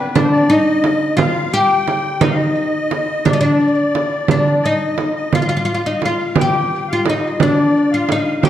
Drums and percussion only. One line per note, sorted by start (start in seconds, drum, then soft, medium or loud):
0.16 frame drum medium
0.84 frame drum medium
1.18 frame drum medium
1.88 frame drum medium
2.21 frame drum medium
2.91 frame drum medium
3.26 frame drum medium
3.95 frame drum medium
4.28 frame drum medium
4.98 frame drum medium
5.33 frame drum medium
6.02 frame drum medium
6.36 frame drum loud
7.06 frame drum medium
7.40 frame drum medium
8.09 frame drum medium
8.43 frame drum medium